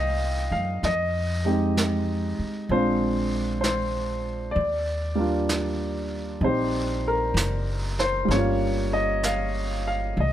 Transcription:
Already playing: upright bass C2, grand piano A#3 C4 D#4 F4 D#5 F5 G5
0.51 upright bass F#2, grand piano F5
0.83 upright bass F2, grand piano D#5, brush sweep, snare
1.45 grand piano G#3 C4 D#4 G4
1.77 brush sweep, snare, hi-hat pedal
2.39 muted upright bass stroke
2.69 upright bass A#1, grand piano G#3 C4 D4 F4 C5, brush sweep
3.61 grand piano C5, brush sweep, snare, hi-hat pedal
4.51 grand piano D5
4.56 upright bass D#2, brush sweep
5.15 grand piano G3 A#3 D4
5.20 grand piano F4
5.49 brush sweep, snare, hi-hat pedal
6.41 upright bass A#1, grand piano C4 D#4 G4 C5, brush sweep
7.08 grand piano A#4
7.34 upright bass F#1, brush sweep, snare, hi-hat pedal
7.99 grand piano C5, snare
8.25 upright bass G1, grand piano G3 A#3
8.31 grand piano C#4 C#5, brush sweep, snare
8.36 grand piano F4
8.93 grand piano D#5
9.23 grand piano F5, brush sweep, snare, hi-hat pedal
9.87 grand piano F5
10.17 upright bass C2, grand piano D#5, brush sweep

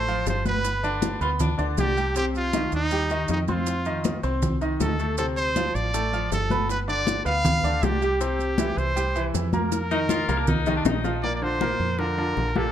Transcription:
Already playing: fingered electric bass A1, trumpet C5
0.08 grand piano F3 F4 F5, high conga, maracas
0.26 fingered electric bass G1, trumpet C5, high bongo, low bongo, high conga, maracas
0.45 grand piano B3 B4 B5, trumpet B4, high bongo, high conga, maracas
0.64 high bongo, high conga, maracas
0.83 grand piano D3 D4 D5, baritone saxophone D4, high conga, maracas
1.02 high bongo, high conga, maracas
1.21 fingered electric bass D2, grand piano B3 B4 B5, baritone saxophone F4, high bongo, maracas
1.40 baritone saxophone D4, high bongo, high conga, low conga, maracas
1.58 fingered electric bass D2, grand piano D3 D4 D5, high conga, maracas
1.77 fingered electric bass C2, trumpet G4, high bongo, low bongo, high conga, maracas
1.97 grand piano G3 G4 G5, high bongo, high conga, maracas
2.16 grand piano C3 C4 C5, trumpet G4, high bongo, high conga, maracas
2.34 trumpet F4, high conga, maracas
2.53 grand piano D#3 D#4 D#5, high bongo, high conga, maracas
2.72 fingered electric bass D#2, trumpet D#4, high bongo, maracas
2.91 grand piano G3 G4 G5, high bongo, high conga, maracas
3.10 grand piano D#3 D#4 D#5, high conga, maracas
3.28 fingered electric bass F2, trumpet D#4, high bongo, low bongo, high conga, maracas
3.48 grand piano C4 C5 C6, trumpet F4, high bongo, high conga, maracas
3.67 high bongo, high conga, maracas
3.85 grand piano D#3 D#4 D#5, high conga, maracas
4.04 high bongo, high conga, maracas
4.23 fingered electric bass C2, grand piano C4 C5 C6, high bongo, maracas
4.42 high bongo, high conga, low conga, maracas
4.61 grand piano D#3 D#4 D#5, high conga, maracas
4.80 fingered electric bass D2, trumpet A4, high bongo, low bongo, high conga, maracas
4.99 grand piano A3 A4 A5, high bongo, high conga, maracas
5.18 grand piano C3 C4 C5, trumpet A4, high bongo, high conga, maracas
5.36 trumpet C5, high conga, maracas
5.56 grand piano F3 F4 F5, high bongo, high conga, maracas
5.75 fingered electric bass A1, trumpet D5, high bongo, maracas
5.94 grand piano A3 A4 A5, high bongo, high conga, maracas
6.13 grand piano F3 F4 F5, high conga, maracas
6.31 fingered electric bass G1, trumpet A4, high bongo, low bongo, high conga, maracas
6.50 grand piano B3 B4 B5, high bongo, high conga, maracas
6.69 trumpet B4, high bongo, high conga, maracas
6.88 grand piano D3 D4 D5, trumpet D5, high conga, maracas
7.07 high bongo, high conga, maracas
7.25 fingered electric bass D2, grand piano B3 B4 B5, trumpet F5, high bongo, maracas
7.45 high bongo, high conga, low conga, maracas
7.63 fingered electric bass D2, grand piano D3 D4 D5, high conga, maracas
7.83 fingered electric bass C2, trumpet G4, high bongo, low bongo, high conga, maracas
8.02 grand piano G3 G4 G5, high bongo, high conga, maracas
8.20 grand piano C3 C4 C5, trumpet G4, high bongo, high conga, maracas
8.39 high conga, maracas
8.58 grand piano E3 E4 E5, high bongo, high conga, maracas
8.77 fingered electric bass C2, trumpet C5, high bongo, maracas
8.96 grand piano G3 G4 G5, high bongo, high conga, maracas
9.15 grand piano E3 E4 E5, high conga, maracas
9.34 fingered electric bass F2, high bongo, low bongo, high conga, maracas
9.53 grand piano A#3 A#4 A#5, trumpet A#4, high bongo, high conga, maracas
9.72 high bongo, high conga, maracas
9.90 grand piano D#3 D#4 D#5, baritone saxophone D#4, high bongo, high conga, maracas
10.09 baritone saxophone F4, high bongo, high conga, maracas
10.28 fingered electric bass C2, grand piano A#3 A#4 A#5, low bongo, maracas
10.38 baritone saxophone D4
10.47 baritone saxophone D#4, high conga, low conga, maracas
10.66 grand piano D#3 D#4 D#5, low bongo, high conga, maracas
10.76 baritone saxophone D4
10.85 fingered electric bass A#1, baritone saxophone D#4, low bongo, high conga, maracas
11.04 grand piano F3 F4 F5, low bongo, high conga, maracas
11.23 grand piano A#2 A#3 A#4, trumpet D5, high bongo, high conga
11.35 trumpet D5
11.42 grand piano D3 D4 F4, trumpet C5, high conga
11.61 grand piano A#2 A#3 A#4, high bongo, high conga
11.80 fingered electric bass F2, high bongo
11.99 grand piano D3 D4 F4, trumpet A#4, high bongo, high conga
12.18 grand piano D3 D4 F4, high conga
12.37 fingered electric bass A#1, high bongo, low bongo, high conga
12.56 grand piano A#2 A#3 G4, trumpet A4, high bongo, high conga

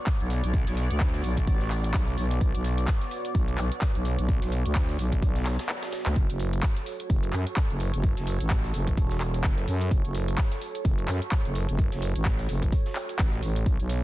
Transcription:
Already playing: analog synth pad B3 F#4 C#5 D5
0.07 kick, snare, clap, closed hi-hat, shaker
0.20 fm bass B1, closed hi-hat
0.30 closed hi-hat, open hi-hat, shaker
0.44 fm bass B1, closed hi-hat, shaker
0.54 kick, closed hi-hat, shaker
0.67 fm bass B1, snare, closed hi-hat
0.77 closed hi-hat, open hi-hat, shaker
0.91 fm bass D2, closed hi-hat, shaker
1.00 kick, snare, clap, closed hi-hat, shaker
1.14 snare, open hi-hat
1.24 fm bass B1, closed hi-hat, open hi-hat, shaker
1.37 kick, closed hi-hat, shaker
1.47 fm bass A1, kick, closed hi-hat, shaker
1.61 snare, closed hi-hat
1.71 clap, closed hi-hat, open hi-hat, shaker
1.84 closed hi-hat, shaker
1.94 fm bass B1, kick, snare, clap, closed hi-hat, shaker
2.08 snare, closed hi-hat
2.18 fm bass B1, closed hi-hat, open hi-hat, shaker
2.31 closed hi-hat, shaker
2.41 fm bass B1, kick, closed hi-hat, shaker
2.55 fm bass B1, closed hi-hat
2.64 closed hi-hat, open hi-hat, shaker
2.78 closed hi-hat, shaker
2.88 kick, snare, clap, closed hi-hat, shaker
3.01 snare, closed hi-hat
3.11 closed hi-hat, open hi-hat, shaker
3.25 closed hi-hat, shaker
3.35 fm bass B1, kick, closed hi-hat, shaker
3.48 closed hi-hat
3.58 fm bass B1, clap, closed hi-hat, open hi-hat, shaker
3.72 closed hi-hat, shaker
3.81 kick, snare, clap, closed hi-hat, shaker
3.95 fm bass B1, closed hi-hat
4.05 closed hi-hat, open hi-hat, shaker
4.19 fm bass B1, closed hi-hat, shaker
4.29 kick, closed hi-hat, shaker
4.42 fm bass B1, snare, closed hi-hat
4.52 closed hi-hat, open hi-hat, shaker
4.66 fm bass D2, closed hi-hat, shaker
4.75 kick, snare, clap, closed hi-hat, shaker
4.89 snare, open hi-hat
4.99 fm bass B1, closed hi-hat, open hi-hat, shaker
5.12 kick, closed hi-hat, shaker
5.22 fm bass B1, kick, closed hi-hat, shaker
5.36 snare, closed hi-hat
5.46 snare, clap, closed hi-hat, open hi-hat, shaker
5.59 snare, closed hi-hat, shaker
5.69 snare, clap, closed hi-hat, shaker
5.83 snare, closed hi-hat
5.93 snare, closed hi-hat, open hi-hat, shaker
6.06 fm bass D2, snare, clap, closed hi-hat, shaker
6.16 fm bass F#1, analog synth pad A4 C#5, kick, closed hi-hat, shaker
6.30 fm bass F#1, closed hi-hat
6.39 closed hi-hat, open hi-hat, shaker
6.53 closed hi-hat, shaker
6.63 kick, snare, clap, closed hi-hat, shaker
6.76 snare, closed hi-hat
6.86 closed hi-hat, open hi-hat, shaker
7.00 closed hi-hat, shaker
7.10 fm bass F#1, kick, closed hi-hat, shaker
7.23 closed hi-hat
7.33 fm bass F#2, clap, closed hi-hat, open hi-hat, shaker
7.47 closed hi-hat, shaker
7.57 kick, snare, clap, closed hi-hat, shaker
7.70 fm bass F#1, closed hi-hat
7.80 closed hi-hat, open hi-hat, shaker
7.94 fm bass F#1, closed hi-hat, shaker
8.04 kick, closed hi-hat, shaker
8.17 fm bass F#1, snare, closed hi-hat
8.27 closed hi-hat, open hi-hat, shaker
8.41 fm bass A1, closed hi-hat, shaker
8.50 kick, snare, clap, closed hi-hat, shaker
8.64 snare, open hi-hat
8.74 fm bass F#1, closed hi-hat, open hi-hat, shaker
8.87 kick, closed hi-hat, shaker
8.97 fm bass E1, kick, closed hi-hat, shaker
9.11 snare, closed hi-hat
9.21 clap, closed hi-hat, open hi-hat, shaker
9.34 closed hi-hat, shaker
9.44 fm bass F#1, kick, snare, clap, closed hi-hat, shaker
9.58 snare, closed hi-hat
9.68 fm bass F#2, closed hi-hat, open hi-hat, shaker
9.81 closed hi-hat, shaker
9.91 fm bass F#1, kick, closed hi-hat, shaker
10.05 fm bass F#1, closed hi-hat
10.15 closed hi-hat, open hi-hat, shaker
10.28 closed hi-hat, shaker
10.38 kick, snare, clap, closed hi-hat, shaker
10.52 snare, closed hi-hat
10.62 closed hi-hat, open hi-hat, shaker
10.75 closed hi-hat, shaker
10.85 fm bass F#1, kick, closed hi-hat, shaker
10.98 closed hi-hat
11.08 fm bass F#2, clap, closed hi-hat, open hi-hat, shaker
11.22 closed hi-hat, shaker
11.32 kick, snare, clap, closed hi-hat, shaker
11.45 fm bass F#1, closed hi-hat
11.55 closed hi-hat, open hi-hat, shaker
11.69 fm bass F#1, closed hi-hat, shaker
11.79 kick, closed hi-hat, shaker
11.92 fm bass F#1, snare, closed hi-hat
12.02 closed hi-hat, open hi-hat, shaker
12.16 fm bass A1, closed hi-hat, shaker
12.25 kick, snare, clap, closed hi-hat, shaker
12.39 snare, open hi-hat
12.49 fm bass F#1, closed hi-hat, open hi-hat, shaker
12.62 kick, closed hi-hat, shaker
12.72 kick, closed hi-hat, shaker
12.86 snare, closed hi-hat
12.96 clap, closed hi-hat, open hi-hat, shaker
13.09 closed hi-hat, shaker
13.19 fm bass A1, kick, snare, clap, closed hi-hat, shaker
13.33 snare, closed hi-hat
13.43 fm bass A1, closed hi-hat, open hi-hat, shaker
13.56 closed hi-hat, shaker
13.66 fm bass B1, analog synth pad B3 F#4 D5, kick, closed hi-hat, shaker
13.80 fm bass B1, closed hi-hat
13.89 closed hi-hat, open hi-hat, shaker

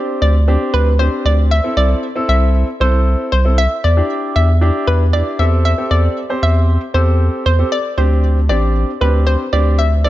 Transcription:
Already playing: grand piano C4 D4 G4
0.22 analog synth bass D2, synth pluck D5
0.48 grand piano C4 D4 G4
0.74 analog synth bass D2, synth pluck B4
0.99 grand piano C4 D4 G4, synth pluck C5
1.25 analog synth bass D2, synth pluck D5
1.51 synth pluck E5
1.64 grand piano C4 E4 A4
1.77 analog synth bass C2, synth pluck D5
2.16 grand piano C4 E4 A4
2.29 analog synth bass C2, synth pluck E5
2.80 analog synth bass C2, grand piano C4 E4 A4, synth pluck C5
3.32 analog synth bass C2, synth pluck C5
3.45 grand piano C4 E4 A4
3.58 synth pluck E5
3.84 analog synth bass E2, synth pluck D5
3.97 grand piano D4 E4 G4
4.36 analog synth bass E2, synth pluck E5
4.61 grand piano D4 E4 G4
4.87 analog synth bass E2, synth pluck B4
5.13 grand piano D4 E4 G4, synth pluck D5
5.39 analog synth bass E2, grand piano C4 G4 A4, synth pluck E5
5.65 synth pluck E5
5.78 grand piano C4 G4 A4
5.91 analog synth bass E2, synth pluck D5
6.30 grand piano C4 G4 C5
6.43 analog synth bass E2, synth pluck E5
6.94 analog synth bass E2, grand piano C4 G4 A4, synth pluck C5
7.46 analog synth bass E2, synth pluck C5
7.59 grand piano C4 G4 A4
7.72 synth pluck D5
7.98 analog synth bass D2, grand piano C4 D4 G4, synth pluck C5
8.49 analog synth bass A1, grand piano C4 D4 G4, synth pluck D5
9.01 analog synth bass D2, grand piano C4 D4 G4, synth pluck B4
9.27 synth pluck C5
9.53 analog synth bass D2, grand piano C4 D4 G4, synth pluck D5
9.79 synth pluck E5
10.04 analog synth bass C2, grand piano C4 E4 A4, synth pluck D5

